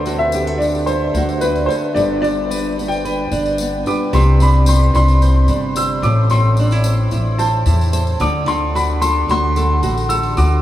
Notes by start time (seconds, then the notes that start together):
Already playing: D2 D3 A3 D4 F#4 A4 C5 D5
0.06 F#4, tambourine
0.19 E5
0.32 G4, tambourine
0.47 A4
0.58 D4 D5, tambourine
0.75 tambourine
0.86 A4 C5, tambourine
1.14 D2 F#4, tambourine
1.29 tambourine
1.41 D4 B4, tambourine
1.56 tambourine
1.66 A4 C5
1.70 tambourine
1.93 G1 G2 B3 D4 G4 D5
1.97 D5, tambourine
2.22 D4 D5, tambourine
2.51 B4, tambourine
2.78 B3, tambourine
2.88 G5, tambourine
3.05 B4, tambourine
3.31 G1 D4, tambourine
3.46 tambourine
3.58 B3, tambourine
3.86 B3 D4 G4 B4 D5 D6, tambourine
4.13 C2 C3 C6, tambourine
4.40 D4 B5, tambourine
4.66 C5 C6, tambourine
4.94 C2 D4 C6, tambourine
5.08 tambourine
5.22 C5, tambourine
5.48 G1 D4, tambourine
5.76 C5 E6, tambourine
6.02 A1 A2 D6, tambourine
6.30 A2 C6, tambourine
6.57 D4, tambourine
6.71 E4, tambourine
6.84 C5, tambourine
7.11 A1 E4, tambourine
7.38 C5 A5, tambourine
7.66 E2 E4, tambourine
7.81 tambourine
7.93 C5, tambourine
8.07 tambourine
8.20 D2 D3 D6, tambourine
8.46 D3 C6, tambourine
8.75 F#4 B5, tambourine
9.02 A4 C6, tambourine
9.28 D2 F#4 C6, tambourine
9.56 A4, tambourine
9.82 A1 F#4, tambourine
9.98 tambourine
10.09 A4 E6, tambourine
10.23 tambourine
10.37 D2 F#4 D6, tambourine